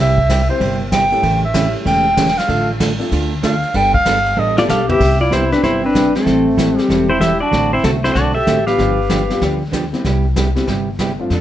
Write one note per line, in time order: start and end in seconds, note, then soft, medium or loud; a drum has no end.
0.00 0.48 C2 medium
0.00 0.19 C3 medium
0.00 0.19 G3 medium
0.00 0.19 C4 medium
0.00 0.19 E4 medium
0.00 0.19 G4 medium
0.00 0.47 E5 loud
0.18 kick medium
0.29 0.41 C3 medium
0.29 0.41 G3 medium
0.29 0.41 C4 medium
0.29 0.41 E4 medium
0.29 0.41 G4 medium
0.29 kick soft
0.29 snare medium
0.29 hi-hat pedal medium
0.29 ride medium
0.49 0.59 G3 medium
0.49 0.59 C4 medium
0.49 0.59 E4 medium
0.49 0.60 G4 medium
0.49 0.79 C5 medium
0.49 0.60 C5 medium
0.60 1.11 G1 medium
0.60 0.81 C3 medium
0.60 0.81 G3 medium
0.60 0.82 C4 medium
0.60 0.82 E4 medium
0.60 0.82 G4 medium
0.60 kick soft
0.60 ride medium
0.92 1.03 C3 medium
0.92 1.04 G3 medium
0.92 1.04 C4 medium
0.92 1.04 E4 medium
0.92 1.04 G4 medium
0.92 1.40 G5 medium
0.92 kick soft
0.92 snare medium
0.92 hi-hat pedal medium
0.92 ride medium
1.11 1.22 A3 medium
1.11 1.22 C#4 medium
1.11 1.22 E4 medium
1.11 1.22 G4 medium
1.11 1.22 A4 medium
1.11 ride soft
1.22 1.73 A1 medium
1.22 1.44 C#3 medium
1.22 1.44 E3 medium
1.22 1.44 A3 medium
1.22 1.44 C#4 medium
1.22 1.44 G4 medium
1.22 kick soft
1.22 ride medium
1.45 1.73 E5 medium
1.54 1.66 C#3 medium
1.54 1.66 E3 medium
1.54 2.02 A3 medium
1.54 1.66 A3 medium
1.54 2.02 C#4 medium
1.54 1.66 C#4 medium
1.54 2.02 E4 medium
1.54 2.02 G4 medium
1.54 1.66 G4 medium
1.54 2.02 A4 medium
1.54 kick soft
1.54 snare medium
1.54 hi-hat pedal medium
1.54 ride medium
1.85 2.36 E1 medium
1.85 2.06 C#3 medium
1.85 2.06 E3 medium
1.85 2.07 A3 medium
1.85 2.07 C#4 medium
1.85 2.07 G4 medium
1.85 2.39 G5 loud
1.85 kick soft
1.85 ride medium
2.17 2.28 C#3 medium
2.17 2.29 E3 medium
2.17 2.29 A3 medium
2.17 2.29 C#4 medium
2.17 2.29 G4 medium
2.17 kick soft
2.17 snare medium
2.17 hi-hat pedal medium
2.17 ride medium
2.28 snare soft
2.38 2.69 F5 loud
2.38 snare soft
2.38 ride medium
2.47 2.99 A1 medium
2.47 2.70 D3 medium
2.47 2.66 F3 medium
2.47 2.66 A3 medium
2.47 2.70 A3 medium
2.47 2.66 D4 medium
2.47 2.70 D4 medium
2.47 2.67 F4 medium
2.47 2.70 F4 medium
2.47 2.67 A4 medium
2.47 2.70 A4 medium
2.47 kick soft
2.47 ride medium
2.80 2.91 D3 medium
2.80 2.92 A3 medium
2.80 2.92 D4 medium
2.80 2.92 F4 medium
2.80 2.92 A4 medium
2.80 kick soft
2.80 snare medium
2.80 hi-hat pedal medium
2.80 ride medium
2.99 3.10 F3 medium
2.99 3.10 A3 medium
2.99 3.10 D4 medium
2.99 3.10 F4 medium
2.99 3.10 A4 medium
2.99 ride medium
3.12 3.62 D2 medium
3.12 3.33 D3 medium
3.12 3.33 A3 medium
3.12 3.33 D4 medium
3.12 3.33 F4 medium
3.12 3.33 A4 medium
3.12 kick soft
3.12 ride medium
3.43 3.54 D3 medium
3.43 3.54 A3 medium
3.43 3.55 D4 medium
3.43 3.55 F4 medium
3.43 3.55 A4 medium
3.43 3.78 F5 medium
3.43 kick soft
3.43 snare medium
3.43 hi-hat pedal medium
3.43 ride medium
3.63 ride medium
3.74 3.99 G1 medium
3.74 3.95 G3 medium
3.74 3.95 B3 medium
3.74 3.96 D4 medium
3.74 3.96 A4 medium
3.74 3.94 G5 loud
3.74 kick soft
3.74 ride medium
3.94 4.41 F5 loud
3.94 kick medium
4.06 4.32 G1 medium
4.06 4.17 G3 medium
4.06 4.18 B3 medium
4.06 4.18 D4 medium
4.06 4.18 A4 medium
4.06 kick soft
4.06 snare medium
4.06 hi-hat pedal medium
4.06 ride medium
4.26 ride soft
4.36 4.64 A1 medium
4.36 4.58 G3 medium
4.36 4.58 B3 medium
4.36 4.58 D4 medium
4.36 4.58 A4 medium
4.36 4.57 D#5 medium
4.57 4.67 A3 medium
4.57 4.67 B3 medium
4.57 4.67 D4 medium
4.57 4.63 F4 medium
4.57 4.68 G4 medium
4.57 4.68 A4 loud
4.57 4.68 D5 medium
4.57 4.63 D5 loud
4.57 snare medium
4.68 4.95 B1 medium
4.68 4.80 G3 medium
4.68 4.80 B3 medium
4.68 4.80 D4 medium
4.68 4.90 G4 medium
4.68 4.80 A4 medium
4.68 4.88 A4 medium
4.68 4.88 F5 loud
4.68 snare medium
4.68 hi-hat pedal medium
4.88 4.99 B3 medium
4.88 4.99 C4 medium
4.88 4.99 E4 medium
4.88 4.99 G4 medium
4.88 5.18 G4 medium
4.88 5.21 G4 loud
4.88 4.99 B4 medium
4.88 5.21 E5 loud
4.88 floor tom medium
5.00 5.51 C2 medium
5.00 5.21 C3 medium
5.00 5.21 G3 soft
5.00 5.21 B3 medium
5.00 5.21 E4 medium
5.00 5.21 G4 medium
5.00 brush sweep soft
5.00 kick medium
5.00 snare soft
5.00 crash medium
5.21 5.32 E4 medium
5.21 5.31 F4 medium
5.21 5.32 D5 loud
5.30 5.42 C3 medium
5.30 5.43 G3 medium
5.30 5.79 B3 medium
5.30 5.43 B3 medium
5.30 5.79 C4 medium
5.30 5.43 E4 medium
5.30 5.79 E4 medium
5.30 5.51 E4 medium
5.30 5.55 E4 medium
5.30 5.43 G4 medium
5.30 5.80 G4 medium
5.30 5.80 B4 medium
5.30 5.51 C5 medium
5.30 kick soft
5.30 snare medium
5.30 hi-hat pedal medium
5.52 5.64 C4 medium
5.52 5.63 D4 medium
5.52 5.63 B4 medium
5.52 snare soft
5.63 6.14 G1 medium
5.63 5.84 C3 medium
5.63 5.84 G3 medium
5.63 5.84 B3 medium
5.63 5.83 E4 medium
5.63 5.84 E4 medium
5.63 5.82 E4 medium
5.63 5.84 G4 medium
5.63 5.84 C5 medium
5.63 brush sweep soft
5.63 kick soft
5.63 snare medium
5.83 6.13 C4 medium
5.83 6.14 D4 medium
5.83 6.17 B4 loud
5.95 6.06 C3 medium
5.95 6.06 G3 medium
5.95 6.06 B3 medium
5.95 6.07 E4 medium
5.95 6.07 G4 medium
5.95 kick soft
5.95 snare medium
5.95 hi-hat pedal medium
6.15 6.79 A3 medium
6.15 7.06 C4 medium
6.15 6.85 A4 medium
6.15 snare soft
6.25 6.77 A1 medium
6.25 6.47 E3 medium
6.25 6.47 G3 medium
6.25 6.47 C4 medium
6.25 6.47 E4 medium
6.25 6.47 A4 medium
6.25 brush sweep medium
6.25 kick soft
6.25 snare soft
6.57 6.69 E3 medium
6.57 6.69 G3 medium
6.57 7.05 A3 medium
6.57 7.05 C4 soft
6.57 6.69 C4 medium
6.57 7.05 E4 soft
6.57 6.69 E4 medium
6.57 7.05 G4 soft
6.57 6.69 A4 medium
6.57 7.05 A4 medium
6.57 kick soft
6.57 snare medium
6.57 hi-hat pedal medium
6.78 7.05 G3 medium
6.78 snare soft
6.85 7.10 E3 medium
6.85 7.10 G3 medium
6.85 7.10 C4 medium
6.85 7.13 G4 medium
6.89 7.40 E1 medium
6.89 7.10 E4 medium
6.89 7.10 A4 medium
6.89 brush sweep medium
6.89 kick soft
6.89 snare medium
7.09 7.20 C4 medium
7.09 7.20 E4 medium
7.09 7.21 C5 medium
7.19 7.32 E3 medium
7.19 7.32 G3 medium
7.19 7.32 C4 medium
7.19 7.32 E4 medium
7.19 7.40 E4 medium
7.19 7.40 G4 medium
7.19 7.32 A4 medium
7.19 7.39 E5 medium
7.19 kick soft
7.19 snare medium
7.19 hi-hat pedal medium
7.40 7.71 D4 medium
7.40 7.70 F#4 medium
7.40 7.73 D5 loud
7.51 7.77 A1 medium
7.51 7.73 D3 medium
7.51 7.73 A3 medium
7.51 7.73 C4 medium
7.51 7.73 F#4 medium
7.51 7.73 A4 medium
7.51 brush sweep medium
7.51 kick soft
7.51 snare soft
7.73 7.83 C4 medium
7.73 7.84 E4 medium
7.73 7.83 C5 medium
7.84 8.10 C2 medium
7.84 7.95 D3 medium
7.84 7.95 A3 medium
7.84 8.01 A3 medium
7.84 7.96 C4 medium
7.84 7.90 C4 medium
7.84 7.96 F#4 medium
7.84 7.90 A4 medium
7.84 7.96 A4 medium
7.84 kick soft
7.84 snare medium
7.84 hi-hat pedal medium
8.03 8.14 A3 medium
8.03 8.14 C4 medium
8.03 8.16 C4 medium
8.03 8.14 D4 medium
8.03 8.13 E4 medium
8.03 8.14 F#4 medium
8.03 8.14 A4 medium
8.03 8.16 C5 medium
8.03 snare soft
8.14 8.42 B1 medium
8.14 8.36 D3 medium
8.14 8.36 A3 medium
8.14 8.36 C4 medium
8.14 8.35 D4 medium
8.14 8.34 F#4 medium
8.14 8.36 F#4 medium
8.14 8.37 A4 medium
8.14 8.34 D5 medium
8.14 brush sweep medium
8.14 kick soft
8.14 snare soft
8.35 8.65 G4 medium
8.35 8.64 A4 medium
8.35 8.64 E5 loud
8.47 8.73 A1 medium
8.47 8.58 D3 medium
8.47 8.58 A3 medium
8.47 8.58 C4 medium
8.47 8.59 F#4 medium
8.47 8.59 A4 medium
8.47 kick soft
8.47 snare medium
8.47 hi-hat pedal medium
8.66 8.77 G3 medium
8.66 8.77 B3 medium
8.66 8.77 D4 medium
8.66 8.78 F4 medium
8.66 9.57 G4 medium
8.66 8.78 G4 medium
8.66 9.58 B4 medium
8.66 9.57 F5 medium
8.66 snare soft
8.77 9.29 G1 medium
8.77 8.99 D3 medium
8.77 8.99 F3 medium
8.77 8.99 B3 medium
8.77 8.99 D4 medium
8.77 8.99 G4 medium
8.77 brush sweep soft
8.77 kick soft
8.77 snare soft
9.09 9.21 D3 medium
9.09 9.21 F3 medium
9.09 9.21 B3 medium
9.09 9.22 D4 medium
9.09 9.21 G4 medium
9.09 kick soft
9.09 snare medium
9.09 hi-hat pedal medium
9.29 9.40 G3 medium
9.29 9.40 B3 medium
9.29 9.40 D4 medium
9.29 9.41 F4 medium
9.29 9.41 G4 medium
9.29 snare soft
9.41 9.92 D2 medium
9.41 9.62 D3 medium
9.41 9.62 F3 soft
9.41 9.62 B3 medium
9.41 9.62 D4 medium
9.41 9.63 G4 medium
9.41 brush sweep medium
9.41 kick soft
9.41 snare soft
9.72 9.84 D3 medium
9.72 9.84 F3 medium
9.72 9.84 B3 medium
9.72 9.84 D4 medium
9.72 9.85 G4 medium
9.72 kick soft
9.72 snare medium
9.72 hi-hat pedal medium
9.93 10.03 G3 medium
9.93 10.03 B3 medium
9.93 10.03 C4 medium
9.93 10.03 E4 medium
9.93 10.04 G4 medium
9.93 snare soft
10.05 10.55 C2 medium
10.05 10.25 C3 medium
10.05 10.26 G3 medium
10.05 10.26 B3 medium
10.05 10.26 E4 medium
10.05 10.26 G4 medium
10.05 brush sweep soft
10.05 kick soft
10.05 snare soft
10.36 10.47 C3 medium
10.36 10.48 G3 medium
10.36 10.48 B3 medium
10.36 10.48 E4 medium
10.36 10.48 G4 medium
10.36 kick soft
10.36 snare medium
10.36 hi-hat pedal medium
10.55 10.66 G3 medium
10.55 10.66 B3 medium
10.55 10.66 C4 medium
10.55 10.66 E4 medium
10.55 10.66 G4 medium
10.55 snare soft
10.67 11.18 G1 medium
10.67 10.88 C3 medium
10.67 10.88 G3 medium
10.67 10.89 B3 medium
10.67 10.89 E4 medium
10.67 10.89 G4 medium
10.67 brush sweep soft
10.67 kick soft
10.67 snare soft
10.99 11.11 C3 medium
10.99 11.11 G3 medium
10.99 11.11 B3 medium
10.99 11.11 E4 medium
10.99 11.11 G4 medium
10.99 kick soft
10.99 snare medium
10.99 hi-hat pedal medium
11.19 11.29 F3 medium
11.19 11.29 A3 medium
11.19 11.30 C4 medium
11.19 11.30 D4 medium
11.19 11.30 F4 medium
11.30 11.41 F2 medium
11.30 11.41 F3 medium
11.30 11.41 C4 medium
11.30 11.41 D4 medium
11.30 11.41 A4 medium
11.30 brush sweep medium
11.30 kick soft
11.30 snare soft